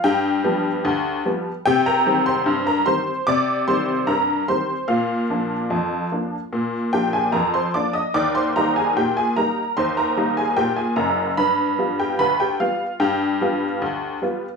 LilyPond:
<<
  \new Staff \with { instrumentName = "Honky-tonk piano" } { \time 2/4 \key ees \major \tempo 4 = 74 <g' g''>4. r8 | <g' g''>16 <bes' bes''>8 <c'' c'''>8 <bes' bes''>16 <c'' c'''>8 | <d'' d'''>8 <c'' c'''>8 <bes' bes''>8 <c'' c'''>8 | <f' f''>2~ |
<f' f''>8 <g' g''>16 <aes' aes''>16 <bes' bes''>16 <c'' c'''>16 <d'' d'''>16 <ees'' ees'''>16 | <d'' d'''>16 <c'' c'''>16 <bes' bes''>16 <aes' aes''>16 <g' g''>16 <aes' aes''>16 <bes' bes''>8 | <c'' c'''>16 <bes' bes''>8 <aes' aes''>16 <g' g''>16 <aes' aes''>16 <bes' bes''>8 | <b' b''>8. <g' g''>16 <b' b''>16 <g' g''>16 <f' f''>8 |
<g' g''>4. r8 | }
  \new Staff \with { instrumentName = "Honky-tonk piano" } { \clef bass \time 2/4 \key ees \major g,8 <f g b>8 d,8 <f g b>8 | c8 <ees g c'>8 g,8 <ees g c'>8 | c8 <ees g c'>8 g,8 <ees g c'>8 | bes,8 <f bes d'>8 f,8 <f bes d'>8 |
bes,8 <f bes d'>8 f,8 <f bes d'>8 | ees,8 <g bes ees'>8 bes,8 <g bes ees'>8 | ees,8 <g bes ees'>8 bes,8 <ges,, ges,>8 | g,8 <g b f'>8 d,8 <g b>8 |
g,8 <g b f'>8 d,8 <g b f'>8 | }
>>